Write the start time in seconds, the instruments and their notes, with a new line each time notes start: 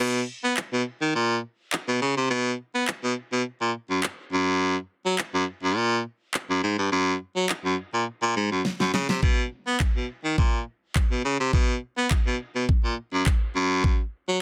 0.00 baritone saxophone B2, crash
0.43 baritone saxophone B3
0.57 clap
0.72 baritone saxophone B2
1.01 baritone saxophone D#3
1.15 baritone saxophone A#2
1.72 clap
1.88 baritone saxophone B2
2.01 baritone saxophone C#3
2.17 baritone saxophone C3
2.30 baritone saxophone B2
2.74 baritone saxophone B3
2.88 clap
3.03 baritone saxophone B2
3.32 baritone saxophone B2
3.61 baritone saxophone A#2
3.90 baritone saxophone F#2
4.03 clap
4.32 baritone saxophone F#2
5.05 baritone saxophone F#3
5.18 clap
5.34 baritone saxophone F#2
5.63 baritone saxophone F#2
5.76 baritone saxophone A#2
6.34 clap
6.49 baritone saxophone F#2
6.63 baritone saxophone G#2
6.78 baritone saxophone G2
6.92 baritone saxophone F#2
7.36 baritone saxophone F#3
7.49 clap
7.65 baritone saxophone F#2
7.94 baritone saxophone A#2
8.22 baritone saxophone A#2
8.36 baritone saxophone G#2
8.51 baritone saxophone F#2
8.65 snare
8.80 baritone saxophone F#2, snare
8.94 baritone saxophone C#3, snare
9.09 baritone saxophone C3, snare
9.23 baritone saxophone B2, kick
9.67 baritone saxophone B3
9.80 kick, clap
9.96 baritone saxophone B2
10.24 baritone saxophone D#3
10.38 baritone saxophone A#2, kick
10.96 kick, clap
11.11 baritone saxophone B2
11.24 baritone saxophone C#3
11.40 baritone saxophone C3
11.53 baritone saxophone B2, kick
11.97 baritone saxophone B3
12.11 kick, clap
12.26 baritone saxophone B2
12.55 baritone saxophone B2
12.69 kick
12.84 baritone saxophone A#2
13.13 baritone saxophone F#2
13.26 kick, clap
13.55 baritone saxophone F#2
13.84 kick
14.28 baritone saxophone F#3